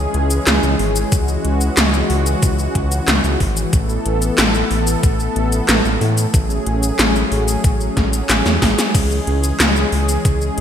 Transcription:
Already playing: E3 G#3 C#4 G#4
0.14 C#2, closed hi-hat
0.30 closed hi-hat, cabasa
0.47 C#2, snare, clap, closed hi-hat, cabasa
0.63 C#2, cabasa
0.79 G#1, open hi-hat
0.96 closed hi-hat, cabasa
1.12 C#2 F#4, kick, closed hi-hat, cabasa
1.28 cabasa
1.45 C#2, closed hi-hat
1.61 closed hi-hat, cabasa
1.77 C#2, snare, clap, closed hi-hat, cabasa
1.94 cabasa
2.10 C#2, open hi-hat
2.26 closed hi-hat, cabasa
2.43 C#2, kick, closed hi-hat, cabasa
2.59 cabasa
2.75 C#2, kick, closed hi-hat
2.92 closed hi-hat, cabasa
3.08 C#2, snare, clap, closed hi-hat, cabasa
3.24 C#2, cabasa
3.40 G#1, kick, open hi-hat
3.57 closed hi-hat, cabasa
3.73 A1 A3 B3 A4, kick, closed hi-hat, cabasa
3.89 cabasa
4.06 A1, closed hi-hat
4.22 closed hi-hat, cabasa
4.38 A1, snare, clap, closed hi-hat, cabasa
4.55 cabasa
4.71 A1, open hi-hat
4.87 closed hi-hat, cabasa
5.03 A1, kick, closed hi-hat, cabasa
5.20 cabasa
5.36 A1, closed hi-hat
5.52 closed hi-hat, cabasa
5.69 A1, snare, clap, closed hi-hat, cabasa
5.85 A1, cabasa
6.01 A2, open hi-hat
6.18 closed hi-hat, cabasa
6.34 A1 F#3 C#4 G#4, kick, closed hi-hat, cabasa
6.50 cabasa
6.66 A1, closed hi-hat
6.83 closed hi-hat, cabasa
6.99 A1, snare, clap, closed hi-hat, cabasa
7.15 cabasa
7.32 A1, open hi-hat
7.48 closed hi-hat, cabasa
7.64 A1, kick, closed hi-hat, cabasa
7.81 cabasa
7.97 A1, kick, snare, closed hi-hat
8.13 closed hi-hat, cabasa
8.29 A1, snare, clap, closed hi-hat, cabasa
8.46 E2, snare, cabasa
8.62 A1, kick, snare, open hi-hat
8.79 snare, closed hi-hat, cabasa
8.95 C#2 E3 G#3 C#4, kick, closed hi-hat, crash, cabasa
9.11 cabasa
9.27 C#2, closed hi-hat
9.44 closed hi-hat, cabasa
9.60 C#2, snare, clap, closed hi-hat, cabasa
9.76 cabasa
9.92 C#2, open hi-hat
10.09 closed hi-hat, cabasa
10.25 C#2, kick, closed hi-hat, cabasa
10.41 cabasa

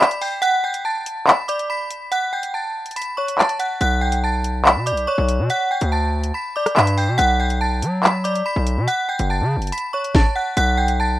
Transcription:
0.00 B5 B6, clap
0.11 closed hi-hat
0.21 G5 G6, open hi-hat
0.42 F#5 F#6, closed hi-hat
0.64 G5 G6
0.74 closed hi-hat
0.85 A5 A6
1.06 closed hi-hat
1.27 B5 B6, clap
1.48 D5 D6, closed hi-hat
1.59 closed hi-hat
1.70 B5 B6
1.91 closed hi-hat
2.12 F#5 F#6, closed hi-hat
2.33 G5 G6
2.43 closed hi-hat
2.54 A5 A6
2.86 closed hi-hat
2.91 closed hi-hat
2.96 B5 B6, closed hi-hat
3.02 closed hi-hat
3.17 C#5 C#6
3.28 closed hi-hat
3.39 A5 A6, clap
3.49 closed hi-hat
3.59 F#5 F#6, closed hi-hat
3.81 B1 F#5 F#6, closed hi-hat
4.01 G5 G6
4.12 closed hi-hat
4.24 A5 A6
4.44 closed hi-hat
4.65 B5 B6, clap
4.76 B2
4.86 D5 D6, closed hi-hat
4.92 B1
4.97 closed hi-hat
5.07 C#5 C#6
5.18 B1
5.29 closed hi-hat
5.39 B2
5.50 F#5 F#6, closed hi-hat
5.71 G5 G6
5.81 D2, closed hi-hat
5.92 A5 A6
6.24 closed hi-hat
6.34 B5 B6
6.56 D5 D6
6.66 cross-stick, closed hi-hat
6.76 G2 B5 B6, clap
6.87 closed hi-hat
6.98 G5 G6, open hi-hat
7.08 B2
7.18 B1 F#5 F#6, closed hi-hat
7.40 G5 G6
7.50 closed hi-hat
7.61 A5 A6
7.82 F#3, closed hi-hat
8.03 B5 B6, clap
8.24 D5 D6, closed hi-hat
8.35 closed hi-hat
8.46 B5 B6
8.56 B1
8.67 closed hi-hat
8.77 B2
8.88 F#5 F#6, closed hi-hat
9.09 G5 G6
9.19 F#1, closed hi-hat
9.30 A5 A6
9.41 C#3
9.56 F#1
9.62 closed hi-hat
9.67 closed hi-hat
9.72 B5 B6, closed hi-hat
9.78 closed hi-hat
9.93 C#5 C#6
10.04 closed hi-hat
10.15 A5 A6, kick, snare
10.36 F#5 F#6
10.57 B1 F#5 F#6, closed hi-hat
10.77 G5 G6
10.88 closed hi-hat
11.00 A5 A6

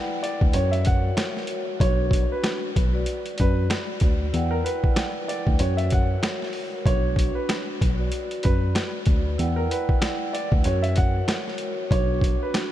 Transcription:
Already playing: E4 B4 D5 F#5 G5
0.23 D5, closed hi-hat
0.41 D2, kick
0.53 F#2 F#4 A#4 C#5, closed hi-hat
0.71 E5, closed hi-hat
0.85 F#5, kick, closed hi-hat
1.17 snare, closed hi-hat
1.37 snare
1.47 F#4 A#4 C#5, closed hi-hat
1.79 B1 D4 F#4 B4 C#5, kick, closed hi-hat
2.11 kick, closed hi-hat
2.32 B4
2.44 snare, closed hi-hat
2.76 B1, kick, closed hi-hat
2.92 F#4 B4 D5
3.06 closed hi-hat
3.26 closed hi-hat
3.38 F#2 B4, kick, closed hi-hat
3.70 snare, closed hi-hat
4.00 D2 F#4 B4 D5, kick, closed hi-hat
4.33 E2 E4 B4 D5 F#5 G5, closed hi-hat
4.51 A#4
4.64 B4, closed hi-hat
4.84 kick
4.94 E4 B4 D5 F#5 G5, snare, closed hi-hat
5.28 D5, closed hi-hat
5.47 D2, kick
5.59 F#2 F#4 A#4 C#5, closed hi-hat
5.77 E5, closed hi-hat
5.90 F#5, kick, closed hi-hat
6.23 snare, closed hi-hat
6.42 snare
6.53 F#4 A#4 C#5, open hi-hat
6.85 B1 D4 F#4 B4 C#5, kick, closed hi-hat
7.16 kick, closed hi-hat
7.35 B4
7.49 snare, closed hi-hat
7.81 B1, kick, closed hi-hat
7.97 F#4 B4 D5
8.12 closed hi-hat
8.31 closed hi-hat
8.43 F#2 B4, kick, closed hi-hat
8.75 snare, closed hi-hat
9.05 D2 F#4 B4 D5, kick, closed hi-hat
9.38 E2 E4 B4 D5 F#5 G5, closed hi-hat
9.56 A#4
9.71 B4, closed hi-hat
9.89 kick
9.99 E4 B4 D5 F#5 G5, snare, closed hi-hat
10.33 D5, closed hi-hat
10.52 D2, kick
10.64 F#2 F#4 A#4 C#5, closed hi-hat
10.82 E5, closed hi-hat
10.96 F#5, kick, closed hi-hat
11.28 snare, closed hi-hat
11.48 snare
11.58 F#4 A#4 C#5, closed hi-hat
11.90 B1 D4 F#4 B4 C#5, kick, closed hi-hat
12.21 kick, closed hi-hat
12.43 B4
12.54 snare, closed hi-hat

